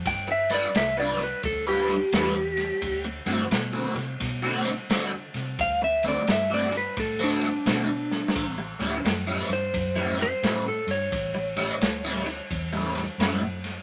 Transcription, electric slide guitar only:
0.07 0.29 G5 medium
0.32 0.52 E5 medium
0.54 0.75 D5 medium
0.77 0.98 E5 medium
1.00 1.21 D5 medium
1.23 1.45 B4 medium
1.45 1.67 A4 medium
1.68 3.02 G4 loud
5.61 5.82 F5 loud
5.84 6.05 E5 loud
6.08 6.29 D5 medium
6.32 6.52 E5 medium
6.54 6.75 D5 medium
6.77 6.98 B4 medium
7.00 7.21 A4 medium
7.24 8.56 D4 medium
9.53 10.19 C5 medium
10.22 10.66 C5 medium
10.68 10.90 A4 medium
10.91 12.93 C#5 medium

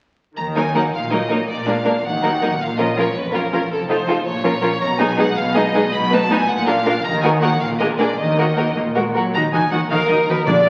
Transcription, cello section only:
0.36 0.83 D#3 soft
0.93 1.39 A#2 soft
1.48 1.95 A#2 soft
2.04 2.51 D#3 soft
2.60 3.06 A#2 soft
3.15 3.61 F2 soft
3.70 4.17 F2 soft
4.25 4.71 A#2 soft
4.81 5.27 B2 medium
5.36 5.83 B2 medium
5.92 6.39 B2 medium
6.48 6.94 A#2 medium
7.04 7.51 D#3 medium
7.61 8.09 A#2 soft
8.18 8.67 D#3 soft
8.76 9.25 A#2 soft
9.34 9.41 D#3 soft
9.52 9.60 D#3 soft
9.72 9.79 D#3 soft
9.90 9.98 D#3 soft
10.09 10.16 D#3 soft
10.27 10.35 D#3 soft
10.46 10.54 A#2 medium
10.65 10.69 A#2 soft

